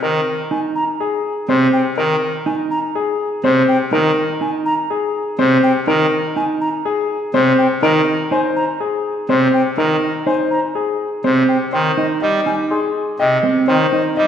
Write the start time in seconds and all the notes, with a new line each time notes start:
0.02 D#3 A#4
0.51 D#4 G#5
0.76 A#5
1.00 G#4
1.49 C3 C4 C5
1.73 G5
1.98 D#3 A#4
2.46 D#4 G#5
2.71 A#5
2.95 G#4
3.44 C3 C4 C5
3.68 G5
3.92 D#3 D#4 A#4
4.41 D#4 G#5
4.66 A#5
4.90 G#4
5.39 C3 C4 C5
5.63 G5
5.87 D#3 D#4 A#4
6.36 D#4 G#5
6.61 A#5
6.85 G#4
7.34 C3 C4 C5
7.58 G5
7.83 D#3 D#4 A#4 D#5
8.31 D#4 C5 G#5
8.56 A#5
8.80 G#4
9.29 C3 C4 C5
9.54 G5
9.78 D#3 D#4 A#4 D#5
10.26 D#4 C5 G#5
10.51 A#5
10.75 G#4
11.24 C3 C4 C5
11.49 G5
11.73 D#3 C5 G5
11.97 D#4 D#5
12.22 G3 D#5
12.46 D#4 G#5
12.71 G#4 C6
13.19 C3 D#5 G5
13.44 C4
13.68 D#3 C5 G5
13.92 D#4 D#5
14.17 G3 D#5